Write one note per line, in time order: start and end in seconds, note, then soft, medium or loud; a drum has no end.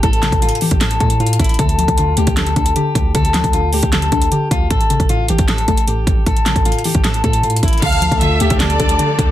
0.00 0.31 A1 loud
0.00 0.41 A2 medium
0.00 0.42 A3 medium
0.00 0.40 A4 loud
0.00 kick loud
0.00 closed hi-hat medium
0.13 closed hi-hat medium
0.23 1.20 C#3 medium
0.23 snare loud
0.23 clap medium
0.23 closed hi-hat medium
0.32 0.51 A1 loud
0.32 kick loud
0.32 closed hi-hat soft
0.42 0.80 A2 medium
0.42 0.58 F4 medium
0.42 closed hi-hat medium
0.49 closed hi-hat medium
0.55 closed hi-hat soft
0.61 1.59 E3 medium
0.61 0.78 G4 medium
0.61 open hi-hat medium
0.71 0.99 A1 loud
0.71 kick loud
0.71 closed hi-hat medium
0.81 1.19 A2 medium
0.81 0.97 A4 medium
0.81 snare loud
0.81 clap loud
0.81 closed hi-hat medium
0.91 closed hi-hat medium
1.00 1.38 A2 loud
1.00 1.59 A3 medium
1.00 1.17 A4 medium
1.00 kick loud
1.00 closed hi-hat medium
1.10 closed hi-hat medium
1.20 1.59 A2 medium
1.20 1.36 F4 medium
1.20 closed hi-hat soft
1.27 closed hi-hat medium
1.33 closed hi-hat medium
1.39 1.58 A1 loud
1.39 1.56 E4 medium
1.39 kick loud
1.39 closed hi-hat medium
1.44 closed hi-hat medium
1.49 closed hi-hat soft
1.54 closed hi-hat soft
1.58 1.87 D2 loud
1.58 1.97 D3 medium
1.58 1.96 A4 loud
1.58 kick loud
1.58 closed hi-hat medium
1.69 closed hi-hat medium
1.78 2.76 F3 medium
1.78 closed hi-hat medium
1.88 2.16 D2 loud
1.88 kick loud
1.88 closed hi-hat medium
1.98 2.36 D3 medium
1.98 2.14 F4 medium
1.98 closed hi-hat medium
2.17 2.27 D2 loud
2.17 3.15 A3 medium
2.17 2.34 G4 medium
2.17 closed hi-hat medium
2.27 2.55 D2 loud
2.27 kick loud
2.27 closed hi-hat medium
2.37 2.75 D3 medium
2.37 2.53 A4 medium
2.37 snare loud
2.37 clap medium
2.37 closed hi-hat medium
2.47 closed hi-hat medium
2.56 2.75 D2 loud
2.56 3.54 D4 medium
2.56 2.72 A4 medium
2.56 kick loud
2.56 closed hi-hat medium
2.66 closed hi-hat medium
2.76 3.13 D3 medium
2.76 3.12 G4 medium
2.76 closed hi-hat medium
2.95 3.14 D2 loud
2.95 kick loud
2.95 closed hi-hat medium
3.14 3.43 D2 loud
3.14 3.53 D3 loud
3.14 3.51 A4 loud
3.14 kick loud
3.14 closed hi-hat medium
3.25 closed hi-hat medium
3.34 4.32 F3 medium
3.34 snare loud
3.34 clap medium
3.34 closed hi-hat medium
3.44 3.81 D2 loud
3.44 kick medium
3.44 closed hi-hat soft
3.53 3.92 D3 medium
3.53 3.70 F4 medium
3.53 closed hi-hat medium
3.73 4.71 A3 medium
3.73 3.89 G4 medium
3.73 open hi-hat medium
3.83 4.11 D2 loud
3.83 kick loud
3.83 closed hi-hat medium
3.92 4.30 D3 medium
3.92 4.09 A4 medium
3.92 snare loud
3.92 clap medium
3.92 closed hi-hat medium
4.02 closed hi-hat medium
4.12 4.31 D2 loud
4.12 4.71 D4 medium
4.12 4.28 A4 medium
4.12 kick loud
4.12 closed hi-hat medium
4.22 closed hi-hat medium
4.32 4.71 D3 medium
4.32 4.48 G4 medium
4.32 closed hi-hat medium
4.51 4.70 D2 loud
4.51 4.67 F4 medium
4.51 kick loud
4.51 closed hi-hat medium
4.71 4.99 A1 loud
4.71 5.09 A2 medium
4.71 5.07 A4 loud
4.71 kick loud
4.71 closed hi-hat medium
4.81 closed hi-hat medium
4.90 5.88 C#3 medium
4.90 closed hi-hat medium
5.00 5.28 A1 loud
5.00 kick loud
5.00 closed hi-hat soft
5.09 5.48 A2 medium
5.09 5.26 F4 medium
5.09 closed hi-hat medium
5.28 5.38 A1 loud
5.28 6.27 E3 medium
5.28 5.45 G4 medium
5.28 closed hi-hat medium
5.39 5.67 A1 loud
5.39 kick medium
5.39 closed hi-hat medium
5.48 5.87 A2 medium
5.48 5.65 A4 medium
5.48 snare loud
5.48 clap medium
5.48 closed hi-hat medium
5.58 closed hi-hat medium
5.68 6.05 A1 loud
5.68 6.65 A3 medium
5.68 5.84 A4 medium
5.68 kick loud
5.68 closed hi-hat medium
5.77 closed hi-hat medium
5.88 6.25 A2 medium
5.88 6.24 G4 medium
5.88 closed hi-hat medium
6.07 6.26 A1 loud
6.07 kick loud
6.07 closed hi-hat medium
6.26 6.55 A1 loud
6.26 6.64 A2 medium
6.26 6.63 A4 loud
6.26 kick loud
6.26 closed hi-hat medium
6.37 closed hi-hat medium
6.46 7.43 C#3 medium
6.46 snare medium
6.46 clap medium
6.46 closed hi-hat medium
6.56 6.74 A1 loud
6.56 kick loud
6.56 closed hi-hat medium
6.65 7.04 A2 medium
6.65 6.82 F4 medium
6.65 closed hi-hat medium
6.72 closed hi-hat medium
6.78 closed hi-hat soft
6.84 7.82 E3 medium
6.84 7.01 G4 medium
6.84 open hi-hat medium
6.95 7.23 A1 loud
6.95 kick medium
6.95 closed hi-hat medium
7.04 7.42 A2 loud
7.04 7.21 A4 medium
7.04 snare loud
7.04 clap medium
7.04 closed hi-hat medium
7.14 closed hi-hat medium
7.24 7.61 A2 loud
7.24 7.82 A3 medium
7.24 7.40 A4 medium
7.24 kick loud
7.24 closed hi-hat medium
7.33 closed hi-hat medium
7.43 7.82 A2 medium
7.43 7.60 F4 medium
7.43 closed hi-hat soft
7.50 closed hi-hat medium
7.56 closed hi-hat medium
7.63 7.82 A1 loud
7.63 7.79 E4 medium
7.63 kick loud
7.63 closed hi-hat medium
7.68 closed hi-hat medium
7.73 closed hi-hat soft
7.78 closed hi-hat soft
7.82 8.10 D2 loud
7.82 8.21 D3 medium
7.82 9.31 F3 medium
7.82 9.31 A3 medium
7.82 9.31 D4 medium
7.82 9.31 A4 medium
7.82 8.19 A4 loud
7.82 8.19 F5 loud
7.82 kick loud
7.82 closed hi-hat medium
7.82 crash loud
7.92 closed hi-hat medium
8.01 8.99 F3 medium
8.01 closed hi-hat medium
8.12 8.40 D2 loud
8.12 kick loud
8.12 closed hi-hat soft
8.21 8.59 D3 medium
8.21 8.38 F4 medium
8.21 8.58 E5 medium
8.21 closed hi-hat medium
8.40 8.50 D2 loud
8.40 9.31 A3 medium
8.40 8.57 G4 medium
8.40 closed hi-hat medium
8.50 8.79 D2 loud
8.50 kick loud
8.50 closed hi-hat medium
8.60 8.98 D3 medium
8.60 8.76 A4 medium
8.60 9.31 D5 medium
8.60 snare loud
8.60 clap loud
8.60 closed hi-hat medium
8.70 closed hi-hat medium
8.80 8.98 D2 loud
8.80 9.31 D4 medium
8.80 8.96 A4 medium
8.80 kick loud
8.80 closed hi-hat medium
8.89 closed hi-hat medium
8.99 9.31 D3 medium
8.99 9.31 G4 loud
8.99 closed hi-hat medium
9.19 9.31 D2 loud
9.19 kick loud
9.19 closed hi-hat medium